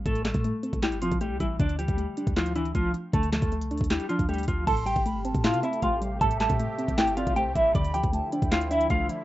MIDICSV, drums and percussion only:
0, 0, Header, 1, 2, 480
1, 0, Start_track
1, 0, Key_signature, 0, "minor"
1, 0, Tempo, 384615
1, 71, Time_signature, 4, 2, 24, 8
1, 11535, End_track
2, 0, Start_track
2, 0, Title_t, "Drums"
2, 71, Note_on_c, 9, 36, 122
2, 71, Note_on_c, 9, 42, 81
2, 192, Note_off_c, 9, 42, 0
2, 192, Note_on_c, 9, 42, 60
2, 196, Note_off_c, 9, 36, 0
2, 311, Note_on_c, 9, 38, 92
2, 312, Note_off_c, 9, 42, 0
2, 312, Note_on_c, 9, 42, 84
2, 320, Note_on_c, 9, 39, 76
2, 428, Note_off_c, 9, 42, 0
2, 428, Note_on_c, 9, 42, 59
2, 431, Note_on_c, 9, 36, 101
2, 436, Note_off_c, 9, 38, 0
2, 445, Note_off_c, 9, 39, 0
2, 553, Note_off_c, 9, 42, 0
2, 553, Note_on_c, 9, 42, 73
2, 556, Note_off_c, 9, 36, 0
2, 678, Note_off_c, 9, 42, 0
2, 790, Note_on_c, 9, 42, 76
2, 912, Note_on_c, 9, 36, 100
2, 914, Note_off_c, 9, 42, 0
2, 915, Note_on_c, 9, 42, 58
2, 1029, Note_off_c, 9, 42, 0
2, 1029, Note_on_c, 9, 42, 80
2, 1031, Note_on_c, 9, 38, 113
2, 1036, Note_off_c, 9, 36, 0
2, 1041, Note_on_c, 9, 39, 88
2, 1150, Note_off_c, 9, 42, 0
2, 1150, Note_on_c, 9, 42, 57
2, 1156, Note_off_c, 9, 38, 0
2, 1165, Note_off_c, 9, 39, 0
2, 1269, Note_off_c, 9, 42, 0
2, 1269, Note_on_c, 9, 42, 97
2, 1392, Note_on_c, 9, 36, 91
2, 1393, Note_off_c, 9, 42, 0
2, 1393, Note_on_c, 9, 42, 62
2, 1509, Note_off_c, 9, 42, 0
2, 1509, Note_on_c, 9, 42, 73
2, 1517, Note_off_c, 9, 36, 0
2, 1634, Note_off_c, 9, 42, 0
2, 1750, Note_on_c, 9, 36, 95
2, 1751, Note_on_c, 9, 42, 77
2, 1875, Note_off_c, 9, 36, 0
2, 1875, Note_off_c, 9, 42, 0
2, 1991, Note_on_c, 9, 36, 119
2, 1992, Note_on_c, 9, 42, 80
2, 2112, Note_off_c, 9, 42, 0
2, 2112, Note_on_c, 9, 42, 60
2, 2116, Note_off_c, 9, 36, 0
2, 2233, Note_off_c, 9, 42, 0
2, 2233, Note_on_c, 9, 42, 85
2, 2348, Note_off_c, 9, 42, 0
2, 2348, Note_on_c, 9, 42, 59
2, 2352, Note_on_c, 9, 36, 97
2, 2473, Note_off_c, 9, 42, 0
2, 2473, Note_on_c, 9, 42, 73
2, 2477, Note_off_c, 9, 36, 0
2, 2598, Note_off_c, 9, 42, 0
2, 2710, Note_on_c, 9, 42, 78
2, 2832, Note_on_c, 9, 36, 96
2, 2835, Note_off_c, 9, 42, 0
2, 2835, Note_on_c, 9, 42, 59
2, 2950, Note_off_c, 9, 42, 0
2, 2950, Note_on_c, 9, 42, 82
2, 2952, Note_on_c, 9, 38, 111
2, 2957, Note_off_c, 9, 36, 0
2, 2961, Note_on_c, 9, 39, 91
2, 3070, Note_off_c, 9, 42, 0
2, 3070, Note_on_c, 9, 42, 54
2, 3077, Note_off_c, 9, 38, 0
2, 3086, Note_off_c, 9, 39, 0
2, 3190, Note_off_c, 9, 42, 0
2, 3190, Note_on_c, 9, 42, 91
2, 3313, Note_off_c, 9, 42, 0
2, 3313, Note_on_c, 9, 42, 60
2, 3429, Note_off_c, 9, 42, 0
2, 3429, Note_on_c, 9, 42, 72
2, 3431, Note_on_c, 9, 36, 91
2, 3554, Note_off_c, 9, 42, 0
2, 3556, Note_off_c, 9, 36, 0
2, 3672, Note_on_c, 9, 42, 75
2, 3796, Note_off_c, 9, 42, 0
2, 3912, Note_on_c, 9, 36, 120
2, 3912, Note_on_c, 9, 42, 78
2, 4033, Note_off_c, 9, 42, 0
2, 4033, Note_on_c, 9, 42, 61
2, 4037, Note_off_c, 9, 36, 0
2, 4151, Note_on_c, 9, 38, 95
2, 4152, Note_off_c, 9, 42, 0
2, 4152, Note_on_c, 9, 42, 83
2, 4160, Note_on_c, 9, 39, 74
2, 4268, Note_off_c, 9, 42, 0
2, 4268, Note_on_c, 9, 42, 58
2, 4272, Note_on_c, 9, 36, 98
2, 4276, Note_off_c, 9, 38, 0
2, 4285, Note_off_c, 9, 39, 0
2, 4392, Note_off_c, 9, 42, 0
2, 4392, Note_on_c, 9, 42, 47
2, 4397, Note_off_c, 9, 36, 0
2, 4511, Note_off_c, 9, 42, 0
2, 4511, Note_on_c, 9, 42, 78
2, 4630, Note_on_c, 9, 46, 85
2, 4632, Note_off_c, 9, 42, 0
2, 4632, Note_on_c, 9, 42, 48
2, 4712, Note_off_c, 9, 42, 0
2, 4712, Note_on_c, 9, 42, 64
2, 4752, Note_on_c, 9, 36, 95
2, 4755, Note_off_c, 9, 46, 0
2, 4792, Note_off_c, 9, 42, 0
2, 4792, Note_on_c, 9, 42, 81
2, 4870, Note_off_c, 9, 42, 0
2, 4870, Note_on_c, 9, 42, 81
2, 4872, Note_on_c, 9, 38, 112
2, 4877, Note_off_c, 9, 36, 0
2, 4881, Note_on_c, 9, 39, 89
2, 4991, Note_off_c, 9, 42, 0
2, 4991, Note_on_c, 9, 42, 53
2, 4997, Note_off_c, 9, 38, 0
2, 5006, Note_off_c, 9, 39, 0
2, 5110, Note_off_c, 9, 42, 0
2, 5110, Note_on_c, 9, 42, 96
2, 5232, Note_on_c, 9, 36, 92
2, 5233, Note_off_c, 9, 42, 0
2, 5233, Note_on_c, 9, 42, 59
2, 5351, Note_off_c, 9, 42, 0
2, 5351, Note_on_c, 9, 42, 46
2, 5357, Note_off_c, 9, 36, 0
2, 5412, Note_off_c, 9, 42, 0
2, 5412, Note_on_c, 9, 42, 54
2, 5471, Note_off_c, 9, 42, 0
2, 5471, Note_on_c, 9, 42, 67
2, 5531, Note_off_c, 9, 42, 0
2, 5531, Note_on_c, 9, 42, 73
2, 5590, Note_off_c, 9, 42, 0
2, 5590, Note_on_c, 9, 36, 94
2, 5590, Note_on_c, 9, 42, 76
2, 5715, Note_off_c, 9, 36, 0
2, 5715, Note_off_c, 9, 42, 0
2, 5831, Note_on_c, 9, 36, 126
2, 5831, Note_on_c, 9, 42, 80
2, 5831, Note_on_c, 9, 49, 104
2, 5952, Note_off_c, 9, 42, 0
2, 5952, Note_on_c, 9, 42, 59
2, 5956, Note_off_c, 9, 36, 0
2, 5956, Note_off_c, 9, 49, 0
2, 6072, Note_off_c, 9, 42, 0
2, 6072, Note_on_c, 9, 42, 88
2, 6187, Note_off_c, 9, 42, 0
2, 6187, Note_on_c, 9, 42, 62
2, 6191, Note_on_c, 9, 36, 104
2, 6312, Note_off_c, 9, 42, 0
2, 6312, Note_on_c, 9, 42, 74
2, 6316, Note_off_c, 9, 36, 0
2, 6437, Note_off_c, 9, 42, 0
2, 6549, Note_on_c, 9, 42, 80
2, 6671, Note_on_c, 9, 36, 99
2, 6674, Note_off_c, 9, 42, 0
2, 6675, Note_on_c, 9, 42, 57
2, 6790, Note_off_c, 9, 42, 0
2, 6790, Note_on_c, 9, 42, 83
2, 6792, Note_on_c, 9, 38, 116
2, 6796, Note_off_c, 9, 36, 0
2, 6801, Note_on_c, 9, 39, 93
2, 6910, Note_off_c, 9, 42, 0
2, 6910, Note_on_c, 9, 42, 58
2, 6916, Note_off_c, 9, 38, 0
2, 6926, Note_off_c, 9, 39, 0
2, 7029, Note_off_c, 9, 42, 0
2, 7029, Note_on_c, 9, 42, 95
2, 7152, Note_off_c, 9, 42, 0
2, 7152, Note_on_c, 9, 42, 61
2, 7268, Note_off_c, 9, 42, 0
2, 7268, Note_on_c, 9, 42, 75
2, 7270, Note_on_c, 9, 36, 95
2, 7393, Note_off_c, 9, 42, 0
2, 7394, Note_off_c, 9, 36, 0
2, 7510, Note_on_c, 9, 42, 79
2, 7635, Note_off_c, 9, 42, 0
2, 7751, Note_on_c, 9, 36, 127
2, 7751, Note_on_c, 9, 42, 85
2, 7872, Note_off_c, 9, 42, 0
2, 7872, Note_on_c, 9, 42, 61
2, 7875, Note_off_c, 9, 36, 0
2, 7990, Note_on_c, 9, 38, 96
2, 7991, Note_off_c, 9, 42, 0
2, 7991, Note_on_c, 9, 42, 86
2, 7999, Note_on_c, 9, 39, 79
2, 8107, Note_off_c, 9, 42, 0
2, 8107, Note_on_c, 9, 42, 64
2, 8111, Note_on_c, 9, 36, 104
2, 8115, Note_off_c, 9, 38, 0
2, 8124, Note_off_c, 9, 39, 0
2, 8231, Note_off_c, 9, 42, 0
2, 8232, Note_on_c, 9, 42, 76
2, 8235, Note_off_c, 9, 36, 0
2, 8356, Note_off_c, 9, 42, 0
2, 8469, Note_on_c, 9, 42, 81
2, 8591, Note_on_c, 9, 36, 96
2, 8593, Note_off_c, 9, 42, 0
2, 8595, Note_on_c, 9, 42, 60
2, 8708, Note_off_c, 9, 42, 0
2, 8708, Note_on_c, 9, 42, 84
2, 8710, Note_on_c, 9, 38, 115
2, 8716, Note_off_c, 9, 36, 0
2, 8719, Note_on_c, 9, 39, 91
2, 8829, Note_off_c, 9, 42, 0
2, 8829, Note_on_c, 9, 42, 56
2, 8835, Note_off_c, 9, 38, 0
2, 8844, Note_off_c, 9, 39, 0
2, 8948, Note_off_c, 9, 42, 0
2, 8948, Note_on_c, 9, 42, 96
2, 9071, Note_on_c, 9, 36, 93
2, 9072, Note_off_c, 9, 42, 0
2, 9072, Note_on_c, 9, 42, 62
2, 9188, Note_off_c, 9, 42, 0
2, 9188, Note_on_c, 9, 42, 75
2, 9196, Note_off_c, 9, 36, 0
2, 9313, Note_off_c, 9, 42, 0
2, 9429, Note_on_c, 9, 36, 96
2, 9429, Note_on_c, 9, 42, 79
2, 9554, Note_off_c, 9, 36, 0
2, 9554, Note_off_c, 9, 42, 0
2, 9670, Note_on_c, 9, 36, 123
2, 9671, Note_on_c, 9, 42, 84
2, 9792, Note_off_c, 9, 42, 0
2, 9792, Note_on_c, 9, 42, 62
2, 9795, Note_off_c, 9, 36, 0
2, 9911, Note_off_c, 9, 42, 0
2, 9911, Note_on_c, 9, 42, 91
2, 10026, Note_off_c, 9, 42, 0
2, 10026, Note_on_c, 9, 42, 64
2, 10030, Note_on_c, 9, 36, 103
2, 10151, Note_off_c, 9, 42, 0
2, 10151, Note_on_c, 9, 42, 75
2, 10155, Note_off_c, 9, 36, 0
2, 10276, Note_off_c, 9, 42, 0
2, 10388, Note_on_c, 9, 42, 79
2, 10510, Note_on_c, 9, 36, 98
2, 10513, Note_off_c, 9, 42, 0
2, 10514, Note_on_c, 9, 42, 58
2, 10628, Note_off_c, 9, 42, 0
2, 10628, Note_on_c, 9, 42, 82
2, 10630, Note_on_c, 9, 38, 116
2, 10635, Note_off_c, 9, 36, 0
2, 10639, Note_on_c, 9, 39, 93
2, 10748, Note_off_c, 9, 42, 0
2, 10748, Note_on_c, 9, 42, 57
2, 10755, Note_off_c, 9, 38, 0
2, 10764, Note_off_c, 9, 39, 0
2, 10869, Note_off_c, 9, 42, 0
2, 10869, Note_on_c, 9, 42, 96
2, 10991, Note_off_c, 9, 42, 0
2, 10991, Note_on_c, 9, 42, 63
2, 11107, Note_off_c, 9, 42, 0
2, 11107, Note_on_c, 9, 42, 78
2, 11109, Note_on_c, 9, 36, 93
2, 11232, Note_off_c, 9, 42, 0
2, 11234, Note_off_c, 9, 36, 0
2, 11349, Note_on_c, 9, 42, 80
2, 11474, Note_off_c, 9, 42, 0
2, 11535, End_track
0, 0, End_of_file